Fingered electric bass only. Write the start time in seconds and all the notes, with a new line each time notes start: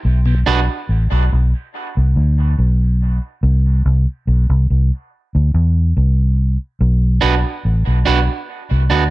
0.05 B1
0.47 B1
0.89 A1
1.12 B1
1.32 B1
1.97 C2
2.16 D2
2.58 B1
3.43 C2
3.86 C2
4.27 B1
4.50 C2
4.70 C2
5.35 D2
5.54 E2
5.97 C2
6.81 B1
7.23 B1
7.65 A1
7.87 B1
8.08 B1
8.71 C2
8.91 D2